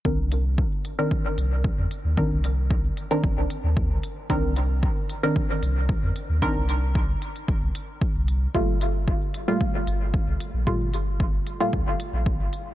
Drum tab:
HH |--x---x---x---x-|--x---xx--x---x-|--x---x---x---x-|--x---xx--x---x-|
BD |o---o---o---o---|o---o---o---o---|o---o---o---o---|o---o---o---o---|

HH |--x---x---x---x-|--x---xx--x---x-|
BD |o---o---o---o---|o---o---o---o---|